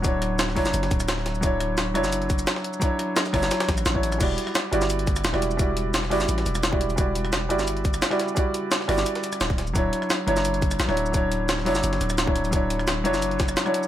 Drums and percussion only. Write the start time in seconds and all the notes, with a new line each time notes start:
0.04 kick, closed hi-hat, shaker
0.22 cross-stick, closed hi-hat
0.39 snare, closed hi-hat, shaker
0.48 snare
0.56 kick, snare, closed hi-hat, open hi-hat
0.66 snare, shaker
0.74 closed hi-hat, shaker
0.83 snare, closed hi-hat
0.91 kick, closed hi-hat, shaker
1.00 cross-stick, closed hi-hat, shaker
1.08 snare, closed hi-hat, shaker
1.18 snare
1.26 snare, closed hi-hat
1.35 shaker
1.43 kick, closed hi-hat, shaker
1.60 cross-stick, closed hi-hat
1.78 snare, closed hi-hat, shaker
1.95 cross-stick, closed hi-hat
2.04 snare, shaker
2.12 closed hi-hat, shaker
2.22 closed hi-hat
2.30 kick, closed hi-hat, shaker
2.39 closed hi-hat, shaker
2.47 snare, closed hi-hat, shaker
2.56 snare
2.64 closed hi-hat
2.74 shaker
2.82 kick, closed hi-hat, shaker
2.99 cross-stick, closed hi-hat
3.16 snare, closed hi-hat, shaker
3.26 snare, shaker
3.34 kick, cross-stick, snare, closed hi-hat, open hi-hat
3.43 snare, shaker
3.51 snare, closed hi-hat, shaker
3.60 snare, closed hi-hat
3.69 kick, snare, closed hi-hat, shaker
3.78 cross-stick, closed hi-hat, shaker
3.86 snare, closed hi-hat, shaker
3.95 kick
4.03 closed hi-hat
4.12 cross-stick, closed hi-hat, shaker
4.21 kick, closed hi-hat, crash, shaker
4.38 closed hi-hat
4.47 cross-stick
4.55 snare, closed hi-hat, shaker
4.73 closed hi-hat
4.82 snare, shaker
4.90 closed hi-hat, shaker
4.99 closed hi-hat
5.07 kick, closed hi-hat, shaker
5.16 cross-stick, closed hi-hat, shaker
5.25 snare, closed hi-hat, shaker
5.34 cross-stick, snare
5.42 closed hi-hat
5.51 shaker
5.59 kick, closed hi-hat, shaker
5.77 closed hi-hat
5.94 snare, closed hi-hat, shaker
6.03 snare
6.11 snare, closed hi-hat, open hi-hat
6.21 snare, shaker
6.29 closed hi-hat, shaker
6.38 snare, closed hi-hat
6.46 closed hi-hat, shaker
6.55 cross-stick, closed hi-hat, shaker
6.63 snare, closed hi-hat, shaker
6.73 kick
6.81 closed hi-hat
6.90 closed hi-hat, shaker
6.98 kick, closed hi-hat, shaker
7.15 closed hi-hat
7.25 cross-stick
7.33 snare, closed hi-hat, shaker
7.50 closed hi-hat
7.59 snare, shaker
7.68 closed hi-hat, shaker
7.77 closed hi-hat
7.85 kick, closed hi-hat, shaker
7.94 cross-stick, closed hi-hat, shaker
8.02 snare, closed hi-hat, shaker
8.11 cross-stick, snare
8.19 snare, closed hi-hat
8.29 shaker
8.37 kick, closed hi-hat, shaker
8.54 closed hi-hat
8.72 snare, closed hi-hat, shaker
8.81 snare
8.89 cross-stick, snare, closed hi-hat, open hi-hat
8.98 snare, shaker
9.06 closed hi-hat, shaker
9.15 snare, closed hi-hat
9.24 closed hi-hat, shaker
9.33 cross-stick, closed hi-hat, shaker
9.41 snare, closed hi-hat, shaker
9.50 kick, snare, shaker
9.58 snare, closed hi-hat
9.67 shaker
9.76 kick, closed hi-hat, shaker
9.93 closed hi-hat
10.02 cross-stick
10.10 snare, closed hi-hat, shaker
10.28 closed hi-hat
10.37 snare, shaker
10.45 closed hi-hat, shaker
10.54 closed hi-hat
10.62 kick, closed hi-hat, shaker
10.71 cross-stick, closed hi-hat, shaker
10.80 snare, closed hi-hat, shaker
10.89 cross-stick, snare
10.97 closed hi-hat
11.06 shaker
11.14 kick, closed hi-hat, shaker
11.32 closed hi-hat
11.49 snare, closed hi-hat, shaker
11.58 snare
11.66 snare, closed hi-hat, open hi-hat
11.75 snare, shaker
11.84 closed hi-hat, shaker
11.93 snare, closed hi-hat
12.01 closed hi-hat, shaker
12.10 cross-stick, closed hi-hat, shaker
12.18 snare, closed hi-hat, shaker
12.27 kick
12.36 closed hi-hat
12.45 closed hi-hat, shaker
12.53 kick, closed hi-hat, shaker
12.70 closed hi-hat
12.79 cross-stick
12.88 snare, closed hi-hat, shaker
13.05 closed hi-hat
13.14 snare, shaker
13.22 closed hi-hat, shaker
13.31 closed hi-hat
13.40 kick, snare, closed hi-hat, shaker
13.49 cross-stick, closed hi-hat, shaker
13.57 snare, closed hi-hat, shaker
13.66 cross-stick
13.74 closed hi-hat
13.83 shaker